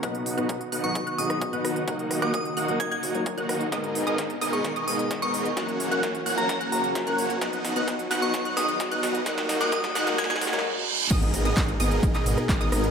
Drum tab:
CC |--------------------------------|--------------------------------|--------------------------------|--------------------------------|
RD |--------------------------------|--------------------------------|--------------------------------|--------------------------------|
HH |x-x-o-x-x-x-o-x-x-x-o-x-x-x-o-x-|x-x-o-x-x-x-o-x-x-x-o-x-x-x-o-x-|x-x-o-x-x-x-o-x-x-x-o-x-x-x-o-x-|x-x-o-x-x-x-o-x-x-x-o-x-x-x-o-x-|
CP |--------------------------------|--------------------------------|--------------------------------|--------------------------------|
SD |----------------------r-----r---|----r-r---------------------r---|o-------o-------o-------o-------|o-------o-------o-------o-------|
BD |o-------o-------o-------o-------|o-------o-------o-------o-------|o-------o-------o-------o-------|o-------o-------o-------o-------|

CC |--------------------------------|--------------------------------|x-------------------------------|
RD |--------------------------------|--------------------------------|x---x---x---x---x---x---x---x---|
HH |x-x-o-x-x-x-o-x-x-x-o-x-x-x-o-x-|x-x-o-x-x-x-o-x-x-x-o-x---------|x-x-o-x-x-x-o-x-x-x-o-x-x-x-o-x-|
CP |--------------------------------|--------------------------------|--------x---------x-----x-------|
SD |o---o---o---o---o---o---o---o---|o-o-o-o-o-o-o-o-oooooooo--------|----------------------r-----r---|
BD |o-------o-------o-------o-------|o-------o-------o---------------|o-------o-------o-------o-------|